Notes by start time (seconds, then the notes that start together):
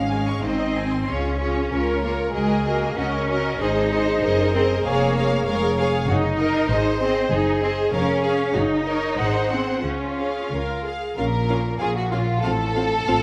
Already playing: G#1 C#4 F5
0.09 G#3 G#5
0.26 C#6
0.43 G#1 C4 D#4 C5 D#5
0.59 D#5
0.75 G#5
0.92 C6
1.08 C#2 C#4 F4 G#4 C#5
1.40 F4 G#4 C#5
1.71 C#2 F4 A#4 C#5
2.03 A#3 F4 A#4 C#5
2.34 C#2 G#3 F#4 G#4 A#4 D#5
2.66 A#3 F#4 A#4 D#5
2.97 C#2 C#4 F#4 A#4 D#5
3.29 F#4 A#4 D#5
3.59 G#1 D#4 G#4 C5 D#5
3.91 G#4 C5 D#5
4.22 F#1 G#4 A#4 C5 D#5
4.53 C4 G#4 C5 D#5
4.85 F1 A#3 G#4 C#5 F5
5.16 G#4 C#5 F5
5.47 F1 G#3 G#4 A#4 C#5 F5
5.78 G#4 C#5 F5
6.08 F#1 D#4 F#4
6.38 A#4 D#5
6.69 G#1 G#4 C5 D#5
6.99 C4 G#4 C5 D#5
7.31 F#1 D#4 G#4
7.62 C4 G#4 C5 D#5
7.92 F1 C#4 G#4 A#4 C#5 F5
8.23 G#4 C#5 F5
8.54 F#1 D#4 F#4
8.85 A#4 C#5 D#5
9.18 G#1 G#4 C5 F#5
9.49 C4 G#4 C5 F#5
9.84 C#2 C#4 F4
10.16 G#4 C#5 F5
10.51 C#2 A#4
10.85 G#4 F5
11.17 A#1 A#2 C#4 F4 A#4 F5
11.49 C#4 F4 F5
11.79 A#1 A#2 C#4 F4 G#4 F5
11.97 F#4
12.12 C#4 F4 F5
12.43 A1 A2 C4 F4 A4 F5
12.76 C4 F4 F5
13.06 A1 A2 C4 F4 F5